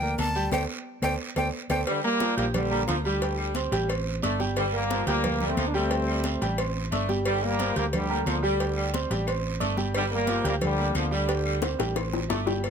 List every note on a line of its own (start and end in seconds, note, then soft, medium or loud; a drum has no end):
0.00 0.15 D2 medium
0.00 0.29 A#3 medium
0.00 0.30 A#4 medium
0.00 0.30 D5 medium
0.00 0.17 G5 loud
0.00 high conga soft
0.18 0.50 D2 medium
0.18 0.50 A5 loud
0.18 cowbell medium
0.18 high conga medium
0.18 short guiro medium
0.18 claves medium
0.35 0.49 G3 loud
0.35 0.49 G4 medium
0.35 0.50 G5 loud
0.35 high conga soft
0.35 short guiro medium
0.52 0.64 D2 loud
0.52 0.63 A4 medium
0.52 0.63 C5 medium
0.52 0.63 D5 loud
0.52 0.63 G5 loud
0.52 cowbell loud
0.52 high conga loud
0.52 long guiro loud
0.52 claves loud
1.02 1.15 D2 loud
1.02 1.14 A4 loud
1.02 1.14 C5 loud
1.02 1.14 D5 loud
1.02 1.14 G5 loud
1.02 cowbell loud
1.02 high conga loud
1.02 long guiro loud
1.02 claves medium
1.36 1.49 D2 loud
1.36 1.47 A4 loud
1.36 1.47 C5 medium
1.36 1.47 D5 loud
1.36 1.48 G5 medium
1.36 cowbell medium
1.36 high conga medium
1.36 long guiro loud
1.36 claves medium
1.69 1.82 D2 medium
1.69 1.81 A4 loud
1.69 1.81 C5 loud
1.69 1.81 D5 loud
1.69 1.81 G5 medium
1.69 cowbell loud
1.69 high conga loud
1.69 long guiro loud
1.69 claves loud
1.86 2.04 D3 medium
1.86 2.04 G3 loud
1.86 2.03 G3 loud
1.86 cowbell loud
1.86 high conga soft
1.86 long guiro medium
1.86 claves medium
2.03 2.36 G3 loud
2.03 2.35 A#3 loud
2.03 2.31 A#3 medium
2.03 2.32 A#4 medium
2.03 2.32 A#5 medium
2.03 high conga soft
2.20 2.47 F3 medium
2.20 cowbell medium
2.20 high conga loud
2.20 short guiro medium
2.37 2.84 A#1 loud
2.37 2.47 G3 medium
2.37 2.45 A#3 loud
2.37 2.65 G4 medium
2.37 2.65 G5 medium
2.37 2.65 G6 medium
2.37 cowbell medium
2.37 high conga soft
2.37 short guiro medium
2.54 2.87 D3 medium
2.54 2.86 G3 loud
2.54 cowbell loud
2.54 high conga soft
2.54 low conga loud
2.54 long guiro medium
2.54 claves medium
2.71 2.80 G3 medium
2.71 2.99 A#3 medium
2.71 2.99 A#4 medium
2.71 2.99 A#5 medium
2.71 high conga soft
2.87 3.67 D2 loud
2.87 2.97 D3 medium
2.87 2.95 F3 medium
2.87 2.96 F3 medium
2.87 cowbell medium
2.87 high conga medium
2.87 short guiro medium
2.87 claves medium
3.04 3.53 D3 medium
3.04 3.22 G3 medium
3.04 3.52 G3 medium
3.04 3.19 G3 loud
3.04 3.19 G4 loud
3.04 3.20 G5 medium
3.04 high conga soft
3.04 short guiro medium
3.21 3.49 G3 medium
3.21 3.50 G4 medium
3.21 3.50 G5 medium
3.21 cowbell loud
3.21 high conga soft
3.21 long guiro medium
3.38 3.89 G3 medium
3.38 high conga soft
3.38 claves medium
3.55 3.69 C4 medium
3.55 3.69 C5 medium
3.55 3.69 C6 medium
3.55 cowbell medium
3.55 high conga loud
3.55 short guiro medium
3.71 4.19 A1 loud
3.71 3.86 G3 loud
3.71 3.86 G4 loud
3.71 3.86 G5 loud
3.71 cowbell medium
3.71 high conga soft
3.71 short guiro medium
3.88 4.16 C4 medium
3.88 4.16 C5 medium
3.88 4.17 C6 medium
3.88 cowbell loud
3.88 high conga soft
3.88 long guiro medium
3.88 claves medium
4.06 high conga soft
4.22 5.01 G1 loud
4.22 4.40 A3 medium
4.22 4.36 D4 medium
4.22 4.37 D5 medium
4.22 4.37 D6 medium
4.22 cowbell medium
4.22 high conga loud
4.22 short guiro medium
4.39 4.67 G3 loud
4.39 4.67 G4 loud
4.39 4.67 G5 loud
4.39 high conga loud
4.39 short guiro medium
4.56 4.65 D3 medium
4.56 4.74 G3 loud
4.56 4.64 G3 medium
4.56 cowbell loud
4.56 high conga soft
4.56 long guiro medium
4.56 claves medium
4.73 5.05 G3 medium
4.73 5.01 A#3 medium
4.73 5.05 A#3 loud
4.73 5.01 A#4 medium
4.73 5.01 A#5 medium
4.73 high conga soft
4.90 5.17 F3 medium
4.90 cowbell medium
4.90 high conga loud
4.90 short guiro medium
5.06 5.54 D2 loud
5.06 5.44 G3 medium
5.06 5.44 A#3 loud
5.06 5.35 G4 medium
5.06 5.35 G5 medium
5.06 5.35 G6 medium
5.06 cowbell medium
5.06 short guiro medium
5.24 cowbell loud
5.24 high conga soft
5.24 low conga loud
5.24 long guiro medium
5.24 claves medium
5.40 5.50 G3 medium
5.40 5.68 A#3 medium
5.40 5.68 A#4 medium
5.40 5.68 A#5 medium
5.40 high conga soft
5.40 low conga medium
5.48 5.67 A3 medium
5.48 5.67 C4 loud
5.57 6.36 D2 loud
5.57 5.66 F3 medium
5.57 cowbell medium
5.57 high conga medium
5.57 short guiro medium
5.57 claves medium
5.68 5.75 D4 medium
5.74 5.88 G3 loud
5.74 5.92 G3 medium
5.74 6.42 A3 medium
5.74 6.42 C4 loud
5.74 5.88 G4 loud
5.74 5.88 G5 loud
5.74 high conga soft
5.74 short guiro medium
5.90 6.18 G3 medium
5.90 6.18 G4 medium
5.90 6.19 G5 medium
5.90 cowbell loud
5.90 high conga soft
5.90 long guiro medium
6.07 6.59 G3 medium
6.07 high conga soft
6.07 claves medium
6.24 6.39 C4 medium
6.24 6.39 C5 medium
6.24 6.39 C6 medium
6.24 cowbell medium
6.24 high conga loud
6.24 short guiro medium
6.41 6.88 A1 loud
6.41 6.55 G3 loud
6.41 6.56 G4 loud
6.41 6.56 G5 loud
6.41 cowbell medium
6.41 high conga soft
6.41 short guiro medium
6.58 6.86 C4 medium
6.58 6.86 C5 medium
6.58 6.86 C6 medium
6.58 cowbell loud
6.58 high conga soft
6.58 long guiro medium
6.58 claves medium
6.76 high conga soft
6.91 7.70 G1 medium
6.91 7.09 A3 medium
6.91 7.06 D4 medium
6.91 7.06 D5 medium
6.91 7.06 D6 medium
6.91 cowbell medium
6.91 high conga loud
6.91 short guiro medium
7.09 7.36 G3 loud
7.09 7.36 G4 loud
7.09 7.37 G5 loud
7.09 high conga medium
7.09 short guiro medium
7.25 7.42 D3 medium
7.25 7.43 G3 loud
7.25 cowbell loud
7.25 long guiro medium
7.25 claves medium
7.42 7.77 G3 loud
7.42 7.70 A#3 medium
7.42 7.77 A#3 loud
7.42 7.70 A#4 medium
7.42 7.70 A#5 medium
7.42 high conga soft
7.59 7.87 F3 medium
7.59 cowbell medium
7.59 high conga loud
7.59 short guiro medium
7.76 8.23 D2 medium
7.76 7.85 G3 medium
7.76 7.85 A#3 loud
7.76 8.03 G4 medium
7.76 8.04 G5 medium
7.76 8.04 G6 medium
7.76 cowbell medium
7.76 high conga soft
7.76 short guiro medium
7.93 8.25 D3 medium
7.93 8.25 G3 loud
7.93 cowbell loud
7.93 high conga soft
7.93 low conga medium
7.93 long guiro medium
7.93 claves medium
8.09 8.19 G3 medium
8.09 8.37 A#3 medium
8.09 8.37 A#4 medium
8.09 8.37 A#5 medium
8.09 high conga soft
8.26 9.05 D2 loud
8.26 8.44 D3 medium
8.26 8.35 F3 medium
8.26 8.44 F3 medium
8.26 cowbell medium
8.26 high conga medium
8.26 short guiro medium
8.26 claves medium
8.43 8.95 D3 medium
8.43 8.57 G3 loud
8.43 8.61 G3 medium
8.43 8.94 G3 medium
8.43 8.57 G4 loud
8.43 8.57 G5 loud
8.43 high conga soft
8.43 short guiro medium
8.60 8.88 G3 medium
8.60 8.88 G4 medium
8.60 8.88 G5 medium
8.60 cowbell loud
8.60 high conga soft
8.60 long guiro medium
8.76 9.27 G3 medium
8.76 high conga soft
8.76 claves medium
8.93 9.07 C4 medium
8.93 9.07 C5 medium
8.93 9.08 C6 medium
8.93 cowbell medium
8.93 high conga loud
8.93 short guiro medium
9.10 9.57 A1 medium
9.10 9.24 G3 loud
9.10 9.24 G4 loud
9.10 9.25 G5 loud
9.10 cowbell medium
9.10 high conga soft
9.10 short guiro medium
9.27 9.55 C4 medium
9.27 9.55 C5 medium
9.27 9.55 C6 medium
9.27 cowbell loud
9.27 high conga soft
9.27 long guiro medium
9.27 claves medium
9.44 high conga soft
9.60 10.39 G1 medium
9.60 9.78 A3 medium
9.60 9.74 D4 medium
9.60 9.74 D5 medium
9.60 9.74 D6 medium
9.60 cowbell medium
9.60 high conga medium
9.60 short guiro medium
9.77 10.05 G3 loud
9.77 10.05 G4 loud
9.77 10.05 G5 loud
9.77 high conga loud
9.77 short guiro medium
9.94 10.04 D3 medium
9.94 10.13 G3 loud
9.94 10.04 G3 loud
9.94 cowbell loud
9.94 high conga soft
9.94 long guiro medium
9.94 claves medium
10.10 10.44 G3 medium
10.10 10.38 A#3 medium
10.10 10.44 A#3 loud
10.10 10.39 A#4 medium
10.10 10.39 A#5 medium
10.10 high conga soft
10.27 10.55 F3 medium
10.27 cowbell medium
10.27 high conga loud
10.27 short guiro medium
10.44 10.92 D2 loud
10.44 10.54 G3 medium
10.44 10.54 A#3 loud
10.44 10.72 G4 medium
10.44 10.72 G5 medium
10.44 10.72 G6 medium
10.44 cowbell medium
10.44 high conga soft
10.44 short guiro medium
10.61 10.94 D3 medium
10.61 10.94 G3 loud
10.61 cowbell loud
10.61 high conga soft
10.61 low conga loud
10.61 long guiro medium
10.61 claves medium
10.77 10.87 G3 medium
10.77 11.06 A#3 medium
10.77 11.06 A#4 medium
10.77 11.06 A#5 medium
10.77 high conga soft
10.95 11.74 D2 medium
10.95 11.11 D3 medium
10.95 11.04 F3 medium
10.95 11.12 F3 medium
10.95 cowbell medium
10.95 high conga medium
10.95 short guiro medium
10.95 claves medium
11.11 11.63 D3 medium
11.11 11.25 G3 loud
11.11 11.30 G3 medium
11.11 11.64 G3 medium
11.11 11.25 G4 loud
11.11 11.26 G5 loud
11.11 high conga soft
11.11 short guiro medium
11.28 11.56 G3 medium
11.28 11.56 G4 medium
11.28 11.56 G5 medium
11.28 cowbell loud
11.28 high conga soft
11.28 long guiro medium
11.44 11.96 G3 medium
11.44 high conga soft
11.44 claves medium
11.62 11.76 C4 medium
11.62 11.76 C5 medium
11.62 11.77 C6 medium
11.62 cowbell medium
11.62 high bongo medium
11.62 high conga loud
11.62 short guiro medium
11.79 12.27 A1 loud
11.79 11.93 G3 medium
11.79 11.93 G4 medium
11.79 11.93 G5 loud
11.79 cowbell medium
11.79 high bongo loud
11.79 short guiro medium
11.95 12.24 C4 medium
11.95 12.24 C5 medium
11.95 12.24 C6 medium
11.95 cowbell loud
11.95 high bongo loud
11.95 high conga soft
11.95 long guiro medium
11.95 claves medium
12.13 low bongo loud
12.13 high conga soft
12.29 12.70 G1 loud
12.29 12.47 A3 medium
12.29 12.44 D4 medium
12.29 12.44 D5 medium
12.29 12.44 D6 medium
12.29 cowbell medium
12.29 low bongo loud
12.29 high conga medium
12.29 short guiro medium
12.46 12.60 G3 loud
12.46 12.61 G4 medium
12.46 12.61 G5 medium
12.46 low bongo loud
12.46 high conga medium
12.46 short guiro medium
12.63 12.70 F3 medium
12.63 12.70 A3 soft
12.63 12.70 A#3 medium
12.63 cowbell loud
12.63 high conga soft
12.63 long guiro medium
12.63 claves medium